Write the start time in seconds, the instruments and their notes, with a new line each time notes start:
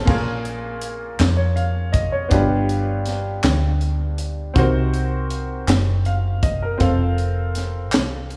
Already playing: grand piano A4
0.05 fingered electric bass A#1, grand piano A#2 A#3 C#4 F4 G#4 A#4, kick, crash
0.45 closed hi-hat
0.81 closed hi-hat
1.19 fingered electric bass F2, snare, clap, closed hi-hat
1.37 grand piano C#5
1.56 grand piano F5, closed hi-hat
1.92 grand piano D#5, kick, closed hi-hat
2.12 grand piano C#5
2.29 fingered electric bass G1, grand piano G2 B3 D4 F4 G4, kick, closed hi-hat
2.33 grand piano B4
2.69 closed hi-hat
3.06 snare, closed hi-hat
3.43 fingered electric bass D2, snare, clap, closed hi-hat
3.81 closed hi-hat
4.18 closed hi-hat
4.54 fingered electric bass C2, grand piano C3 C4 D#4 F#4 A#4, kick, closed hi-hat
4.59 grand piano C5
4.94 closed hi-hat
5.30 closed hi-hat
5.67 fingered electric bass F#1, snare, clap, closed hi-hat
6.05 grand piano F5, closed hi-hat
6.43 grand piano D#5, kick, closed hi-hat
6.62 grand piano A#4
6.78 fingered electric bass F1, grand piano C4 F4 A4 C5, kick, closed hi-hat
6.82 grand piano F5
7.18 closed hi-hat
7.55 snare, closed hi-hat
7.92 fingered electric bass C2, snare, clap, closed hi-hat
8.30 closed hi-hat